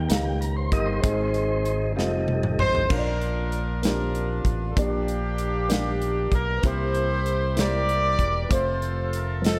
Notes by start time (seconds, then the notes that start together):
Already playing: D#3 A#3 D#4 G4 D#5
0.08 C#2 A#3 D#4 G4 A#4 F5, snare, closed hi-hat
0.25 G4
0.41 A#4, closed hi-hat
0.57 C5
0.72 G1 G3 A#3 D#4 D#5, kick, closed hi-hat
0.86 C5
1.02 G#1 G#2 G#3 C4 D#4 G#4 D#5, kick, closed hi-hat
1.34 closed hi-hat
1.65 closed hi-hat
1.96 F1 G3 A3 C4 D#4 F4 A4 D#5, snare
2.28 high tom
2.43 mid tom
2.59 A1 C5, mid tom
2.75 floor tom
2.89 A#1 A#2 A#3 D4 F4 A#4 C#5, kick, crash
2.99 D5
3.21 closed hi-hat
3.52 closed hi-hat
3.82 A#3 C4 D4 F4 G4 A#4, snare, closed hi-hat
3.89 D4
4.15 closed hi-hat
4.44 A1, kick, closed hi-hat
4.71 A4
4.76 A#1 A#2 A#3 D4 G4 D5, kick, closed hi-hat
5.08 closed hi-hat
5.38 closed hi-hat
5.69 A#3 D4 G4 F5, snare, closed hi-hat
6.02 closed hi-hat
6.32 B1 A#4, kick, closed hi-hat
6.58 B4
6.62 C2 C3 A#3 E4 G4 C5, kick, closed hi-hat
6.66 E4 G4 C5
6.95 closed hi-hat
7.26 closed hi-hat
7.56 A#3 E4 G4 A#4 C5 D5, snare, closed hi-hat
7.60 D5
7.89 closed hi-hat
8.19 E1, kick, closed hi-hat
8.44 B4
8.49 F1 A3 C4 F4 A4 C5, kick, closed hi-hat
8.53 C5
8.82 closed hi-hat
9.13 A#4, closed hi-hat
9.42 F3 C4 F4 A4 D#5, closed hi-hat
9.46 A4, snare